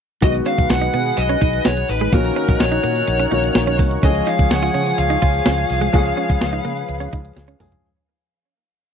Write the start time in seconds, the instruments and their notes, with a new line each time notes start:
0.21 fretless electric bass B1, grand piano D#3 G#3 B3 F#4, clean electric guitar B3, analog synth pad D#4 G#4 B4 F#5, lead electric guitar D#5, kick, closed hi-hat
0.34 closed hi-hat
0.46 clean electric guitar C#4, lead electric guitar F5, closed hi-hat
0.58 fretless electric bass B1, muted clean electric guitar stroke, kick, closed hi-hat
0.70 fretless electric bass B1, lead electric guitar F#5, muted clean electric guitar stroke, snare, closed hi-hat
0.82 clean electric guitar D#4, closed hi-hat
0.94 fretless electric bass B2, clean electric guitar B3, closed hi-hat
1.06 closed hi-hat
1.17 fretless electric bass B1, lead electric guitar D#5, muted clean electric guitar stroke, closed hi-hat
1.29 clean electric guitar C#4, closed hi-hat
1.41 fretless electric bass B1, clean electric guitar D#4, kick, closed hi-hat
1.53 closed hi-hat
1.65 fretless electric bass B1, clean electric guitar B3, lead electric guitar C#5, snare, closed hi-hat
1.77 muted clean electric guitar stroke, closed hi-hat
1.89 fretless electric bass A1, lead electric guitar B4, open hi-hat
2.01 clean electric guitar G#3, closed hi-hat
2.12 fretless electric bass A#1, grand piano D#3 A#3 C#4 F#4, clean electric guitar A#3, analog synth pad A#4 C#5 F#5, lead electric guitar A#4, kick, closed hi-hat
2.24 closed hi-hat
2.36 clean electric guitar C#4, closed hi-hat
2.48 fretless electric bass A#1, muted clean electric guitar stroke, kick, closed hi-hat
2.60 fretless electric bass A#1, lead electric guitar C#5, muted clean electric guitar stroke, snare, closed hi-hat
2.72 clean electric guitar D#4, closed hi-hat
2.83 fretless electric bass A#2, clean electric guitar A#3, closed hi-hat
2.96 closed hi-hat
3.07 fretless electric bass A#1, muted clean electric guitar stroke, closed hi-hat
3.20 clean electric guitar C#4, closed hi-hat
3.31 fretless electric bass A#1, grand piano D#3 A#3 C#4 F#4, clean electric guitar D#4, closed hi-hat
3.43 closed hi-hat
3.55 fretless electric bass A#1, muted clean electric guitar stroke, snare, closed hi-hat
3.67 clean electric guitar C#4, closed hi-hat
3.79 fretless electric bass C2, clean electric guitar A#3, kick, open hi-hat
3.91 closed hi-hat
4.02 fretless electric bass C#2, grand piano E3 G#3 C#4 G#4, analog synth pad F3 G#4 G#5, clean electric guitar C#4, lead electric guitar D#5, kick, closed hi-hat
4.08 grand piano F3
4.15 closed hi-hat
4.27 clean electric guitar D#4, lead electric guitar F5, closed hi-hat
4.39 fretless electric bass C#2, muted clean electric guitar stroke, kick, closed hi-hat
4.51 fretless electric bass C#2, lead electric guitar F#5, muted clean electric guitar stroke, snare, closed hi-hat
4.63 clean electric guitar F4, closed hi-hat
4.74 fretless electric bass C#3, clean electric guitar C#4, closed hi-hat
4.86 closed hi-hat
4.98 fretless electric bass C#2, lead electric guitar F5, muted clean electric guitar stroke, closed hi-hat
5.10 clean electric guitar D#4, closed hi-hat
5.22 fretless electric bass C#2, clean electric guitar F4, kick, closed hi-hat
5.34 closed hi-hat
5.46 fretless electric bass C#2, clean electric guitar C#4, snare, closed hi-hat
5.58 muted clean electric guitar stroke, closed hi-hat
5.70 fretless electric bass C2, open hi-hat
5.81 clean electric guitar G#3, closed hi-hat
5.93 fretless electric bass C#2, grand piano F3 G#3 C#4 G#4, clean electric guitar A#3, analog synth pad B4, kick, closed hi-hat
6.06 closed hi-hat
6.17 clean electric guitar C#4, closed hi-hat
6.29 fretless electric bass C#2, muted clean electric guitar stroke, kick, closed hi-hat
6.41 fretless electric bass C#2, muted clean electric guitar stroke, snare, closed hi-hat
6.53 clean electric guitar D#4, closed hi-hat
6.65 fretless electric bass C#3, clean electric guitar A#3, closed hi-hat
6.77 closed hi-hat
6.89 fretless electric bass C#2, muted clean electric guitar stroke, closed hi-hat
7.00 clean electric guitar C#4, closed hi-hat
7.13 fretless electric bass C#2, clean electric guitar D#4, kick, closed hi-hat
7.25 closed hi-hat
7.36 fretless electric bass C#2, muted clean electric guitar stroke, snare, closed hi-hat
7.48 clean electric guitar C#4, closed hi-hat
7.60 fretless electric bass C2, grand piano F3 G#3 C#4 G#4, clean electric guitar A#3, mid tom, open hi-hat
7.72 closed hi-hat, floor tom